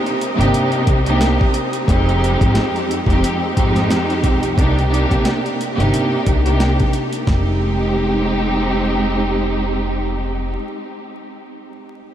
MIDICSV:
0, 0, Header, 1, 5, 480
1, 0, Start_track
1, 0, Tempo, 674157
1, 1338, Time_signature, 4, 2, 24, 8
1, 8645, End_track
2, 0, Start_track
2, 0, Title_t, "Tonewheel organ"
2, 0, Program_c, 0, 16
2, 0, Note_on_c, 0, 67, 68
2, 0, Note_on_c, 0, 72, 68
2, 0, Note_on_c, 0, 82, 65
2, 0, Note_on_c, 0, 87, 77
2, 1304, Note_off_c, 0, 87, 0
2, 1318, Note_off_c, 0, 67, 0
2, 1318, Note_off_c, 0, 72, 0
2, 1318, Note_off_c, 0, 82, 0
2, 8645, End_track
3, 0, Start_track
3, 0, Title_t, "String section"
3, 0, Program_c, 1, 48
3, 0, Note_on_c, 1, 48, 97
3, 0, Note_on_c, 1, 58, 93
3, 0, Note_on_c, 1, 62, 92
3, 0, Note_on_c, 1, 63, 95
3, 0, Note_on_c, 1, 67, 122
3, 94, Note_off_c, 1, 48, 0
3, 96, Note_off_c, 1, 58, 0
3, 97, Note_off_c, 1, 62, 0
3, 98, Note_off_c, 1, 63, 0
3, 99, Note_off_c, 1, 67, 0
3, 260, Note_on_c, 1, 48, 105
3, 263, Note_on_c, 1, 58, 88
3, 265, Note_on_c, 1, 62, 85
3, 268, Note_on_c, 1, 63, 87
3, 270, Note_on_c, 1, 67, 113
3, 703, Note_off_c, 1, 48, 0
3, 704, Note_off_c, 1, 58, 0
3, 706, Note_off_c, 1, 62, 0
3, 707, Note_off_c, 1, 63, 0
3, 708, Note_off_c, 1, 67, 0
3, 745, Note_on_c, 1, 48, 102
3, 747, Note_on_c, 1, 58, 92
3, 750, Note_on_c, 1, 62, 86
3, 752, Note_on_c, 1, 63, 88
3, 756, Note_on_c, 1, 67, 114
3, 1068, Note_off_c, 1, 48, 0
3, 1070, Note_off_c, 1, 58, 0
3, 1071, Note_off_c, 1, 62, 0
3, 1072, Note_off_c, 1, 63, 0
3, 1074, Note_off_c, 1, 67, 0
3, 1335, Note_on_c, 1, 41, 104
3, 1338, Note_on_c, 1, 56, 98
3, 1341, Note_on_c, 1, 60, 93
3, 1343, Note_on_c, 1, 63, 91
3, 1346, Note_on_c, 1, 67, 107
3, 2116, Note_off_c, 1, 41, 0
3, 2117, Note_off_c, 1, 56, 0
3, 2119, Note_off_c, 1, 60, 0
3, 2120, Note_off_c, 1, 63, 0
3, 2121, Note_off_c, 1, 67, 0
3, 2189, Note_on_c, 1, 41, 91
3, 2192, Note_on_c, 1, 56, 79
3, 2194, Note_on_c, 1, 60, 89
3, 2196, Note_on_c, 1, 63, 81
3, 2199, Note_on_c, 1, 67, 106
3, 2511, Note_off_c, 1, 41, 0
3, 2512, Note_off_c, 1, 56, 0
3, 2513, Note_off_c, 1, 60, 0
3, 2514, Note_off_c, 1, 63, 0
3, 2516, Note_off_c, 1, 67, 0
3, 2533, Note_on_c, 1, 41, 104
3, 2536, Note_on_c, 1, 56, 93
3, 2539, Note_on_c, 1, 60, 89
3, 2541, Note_on_c, 1, 63, 94
3, 2544, Note_on_c, 1, 67, 103
3, 3205, Note_off_c, 1, 41, 0
3, 3206, Note_off_c, 1, 56, 0
3, 3208, Note_off_c, 1, 60, 0
3, 3209, Note_off_c, 1, 63, 0
3, 3210, Note_off_c, 1, 67, 0
3, 3250, Note_on_c, 1, 48, 88
3, 3253, Note_on_c, 1, 58, 80
3, 3255, Note_on_c, 1, 62, 85
3, 3258, Note_on_c, 1, 63, 90
3, 3260, Note_on_c, 1, 67, 105
3, 3470, Note_off_c, 1, 48, 0
3, 3473, Note_off_c, 1, 58, 0
3, 3475, Note_off_c, 1, 62, 0
3, 3477, Note_off_c, 1, 63, 0
3, 3478, Note_on_c, 1, 48, 93
3, 3481, Note_on_c, 1, 58, 91
3, 3482, Note_off_c, 1, 67, 0
3, 3483, Note_on_c, 1, 62, 86
3, 3486, Note_on_c, 1, 63, 91
3, 3489, Note_on_c, 1, 67, 115
3, 3934, Note_off_c, 1, 48, 0
3, 3936, Note_off_c, 1, 58, 0
3, 3937, Note_off_c, 1, 62, 0
3, 3938, Note_off_c, 1, 63, 0
3, 3940, Note_off_c, 1, 67, 0
3, 4100, Note_on_c, 1, 48, 96
3, 4102, Note_on_c, 1, 58, 82
3, 4105, Note_on_c, 1, 62, 77
3, 4108, Note_on_c, 1, 63, 85
3, 4110, Note_on_c, 1, 67, 107
3, 4543, Note_off_c, 1, 48, 0
3, 4544, Note_off_c, 1, 58, 0
3, 4546, Note_off_c, 1, 62, 0
3, 4547, Note_off_c, 1, 63, 0
3, 4548, Note_off_c, 1, 67, 0
3, 4584, Note_on_c, 1, 48, 91
3, 4587, Note_on_c, 1, 58, 85
3, 4589, Note_on_c, 1, 62, 78
3, 4592, Note_on_c, 1, 63, 79
3, 4594, Note_on_c, 1, 67, 105
3, 4908, Note_off_c, 1, 48, 0
3, 4910, Note_off_c, 1, 58, 0
3, 4911, Note_off_c, 1, 62, 0
3, 4912, Note_off_c, 1, 63, 0
3, 4913, Note_off_c, 1, 67, 0
3, 5175, Note_on_c, 1, 56, 88
3, 5177, Note_on_c, 1, 60, 85
3, 5179, Note_on_c, 1, 63, 84
3, 5182, Note_on_c, 1, 67, 100
3, 7508, Note_off_c, 1, 56, 0
3, 7510, Note_off_c, 1, 60, 0
3, 7512, Note_off_c, 1, 63, 0
3, 7515, Note_off_c, 1, 67, 0
3, 8645, End_track
4, 0, Start_track
4, 0, Title_t, "Upright bass"
4, 0, Program_c, 2, 32
4, 275, Note_on_c, 2, 31, 97
4, 370, Note_off_c, 2, 31, 0
4, 622, Note_on_c, 2, 36, 90
4, 966, Note_off_c, 2, 36, 0
4, 1339, Note_on_c, 2, 29, 106
4, 1685, Note_off_c, 2, 29, 0
4, 1717, Note_on_c, 2, 32, 86
4, 1811, Note_off_c, 2, 32, 0
4, 2182, Note_on_c, 2, 29, 92
4, 2283, Note_off_c, 2, 29, 0
4, 2543, Note_on_c, 2, 32, 86
4, 2760, Note_off_c, 2, 32, 0
4, 3016, Note_on_c, 2, 35, 84
4, 3236, Note_off_c, 2, 35, 0
4, 3259, Note_on_c, 2, 36, 97
4, 3605, Note_off_c, 2, 36, 0
4, 3638, Note_on_c, 2, 34, 81
4, 3731, Note_off_c, 2, 34, 0
4, 4115, Note_on_c, 2, 31, 92
4, 4210, Note_off_c, 2, 31, 0
4, 4462, Note_on_c, 2, 36, 85
4, 4807, Note_off_c, 2, 36, 0
4, 5178, Note_on_c, 2, 29, 96
4, 7511, Note_off_c, 2, 29, 0
4, 8645, End_track
5, 0, Start_track
5, 0, Title_t, "Drums"
5, 45, Note_on_c, 9, 42, 38
5, 116, Note_off_c, 9, 42, 0
5, 152, Note_on_c, 9, 42, 74
5, 223, Note_off_c, 9, 42, 0
5, 289, Note_on_c, 9, 42, 53
5, 360, Note_off_c, 9, 42, 0
5, 386, Note_on_c, 9, 42, 115
5, 457, Note_off_c, 9, 42, 0
5, 511, Note_on_c, 9, 42, 37
5, 582, Note_off_c, 9, 42, 0
5, 620, Note_on_c, 9, 42, 77
5, 622, Note_on_c, 9, 36, 99
5, 691, Note_off_c, 9, 42, 0
5, 693, Note_off_c, 9, 36, 0
5, 758, Note_on_c, 9, 42, 50
5, 829, Note_off_c, 9, 42, 0
5, 860, Note_on_c, 9, 38, 111
5, 866, Note_on_c, 9, 42, 98
5, 931, Note_off_c, 9, 38, 0
5, 937, Note_off_c, 9, 42, 0
5, 1004, Note_on_c, 9, 36, 97
5, 1075, Note_off_c, 9, 36, 0
5, 1096, Note_on_c, 9, 42, 78
5, 1167, Note_off_c, 9, 42, 0
5, 1232, Note_on_c, 9, 42, 61
5, 1304, Note_off_c, 9, 42, 0
5, 1339, Note_on_c, 9, 36, 115
5, 1345, Note_on_c, 9, 42, 86
5, 1410, Note_off_c, 9, 36, 0
5, 1416, Note_off_c, 9, 42, 0
5, 1487, Note_on_c, 9, 42, 36
5, 1558, Note_off_c, 9, 42, 0
5, 1595, Note_on_c, 9, 42, 68
5, 1666, Note_off_c, 9, 42, 0
5, 1717, Note_on_c, 9, 36, 95
5, 1720, Note_on_c, 9, 42, 59
5, 1788, Note_off_c, 9, 36, 0
5, 1791, Note_off_c, 9, 42, 0
5, 1816, Note_on_c, 9, 42, 103
5, 1818, Note_on_c, 9, 38, 110
5, 1887, Note_off_c, 9, 42, 0
5, 1890, Note_off_c, 9, 38, 0
5, 1965, Note_on_c, 9, 42, 35
5, 2036, Note_off_c, 9, 42, 0
5, 2071, Note_on_c, 9, 42, 72
5, 2143, Note_off_c, 9, 42, 0
5, 2182, Note_on_c, 9, 36, 95
5, 2208, Note_on_c, 9, 42, 51
5, 2253, Note_off_c, 9, 36, 0
5, 2280, Note_off_c, 9, 42, 0
5, 2307, Note_on_c, 9, 42, 112
5, 2378, Note_off_c, 9, 42, 0
5, 2541, Note_on_c, 9, 42, 73
5, 2542, Note_on_c, 9, 36, 94
5, 2612, Note_off_c, 9, 42, 0
5, 2613, Note_off_c, 9, 36, 0
5, 2675, Note_on_c, 9, 38, 38
5, 2678, Note_on_c, 9, 42, 48
5, 2746, Note_off_c, 9, 38, 0
5, 2749, Note_off_c, 9, 42, 0
5, 2780, Note_on_c, 9, 38, 103
5, 2786, Note_on_c, 9, 42, 97
5, 2852, Note_off_c, 9, 38, 0
5, 2857, Note_off_c, 9, 42, 0
5, 2920, Note_on_c, 9, 42, 36
5, 2991, Note_off_c, 9, 42, 0
5, 3016, Note_on_c, 9, 36, 90
5, 3017, Note_on_c, 9, 42, 72
5, 3087, Note_off_c, 9, 36, 0
5, 3088, Note_off_c, 9, 42, 0
5, 3154, Note_on_c, 9, 42, 60
5, 3225, Note_off_c, 9, 42, 0
5, 3259, Note_on_c, 9, 36, 110
5, 3265, Note_on_c, 9, 42, 83
5, 3330, Note_off_c, 9, 36, 0
5, 3337, Note_off_c, 9, 42, 0
5, 3408, Note_on_c, 9, 42, 34
5, 3479, Note_off_c, 9, 42, 0
5, 3517, Note_on_c, 9, 42, 67
5, 3588, Note_off_c, 9, 42, 0
5, 3638, Note_on_c, 9, 36, 100
5, 3641, Note_on_c, 9, 42, 58
5, 3709, Note_off_c, 9, 36, 0
5, 3712, Note_off_c, 9, 42, 0
5, 3738, Note_on_c, 9, 42, 102
5, 3740, Note_on_c, 9, 38, 107
5, 3809, Note_off_c, 9, 42, 0
5, 3811, Note_off_c, 9, 38, 0
5, 3886, Note_on_c, 9, 42, 35
5, 3957, Note_off_c, 9, 42, 0
5, 3992, Note_on_c, 9, 42, 71
5, 4064, Note_off_c, 9, 42, 0
5, 4130, Note_on_c, 9, 42, 50
5, 4201, Note_off_c, 9, 42, 0
5, 4228, Note_on_c, 9, 42, 107
5, 4299, Note_off_c, 9, 42, 0
5, 4461, Note_on_c, 9, 42, 73
5, 4462, Note_on_c, 9, 36, 92
5, 4532, Note_off_c, 9, 42, 0
5, 4533, Note_off_c, 9, 36, 0
5, 4598, Note_on_c, 9, 42, 47
5, 4669, Note_off_c, 9, 42, 0
5, 4700, Note_on_c, 9, 38, 105
5, 4706, Note_on_c, 9, 42, 94
5, 4771, Note_off_c, 9, 38, 0
5, 4777, Note_off_c, 9, 42, 0
5, 4838, Note_on_c, 9, 42, 35
5, 4844, Note_on_c, 9, 36, 90
5, 4909, Note_off_c, 9, 42, 0
5, 4915, Note_off_c, 9, 36, 0
5, 4936, Note_on_c, 9, 42, 74
5, 5007, Note_off_c, 9, 42, 0
5, 5073, Note_on_c, 9, 42, 58
5, 5144, Note_off_c, 9, 42, 0
5, 5178, Note_on_c, 9, 36, 97
5, 5179, Note_on_c, 9, 38, 82
5, 5249, Note_off_c, 9, 36, 0
5, 5250, Note_off_c, 9, 38, 0
5, 8645, End_track
0, 0, End_of_file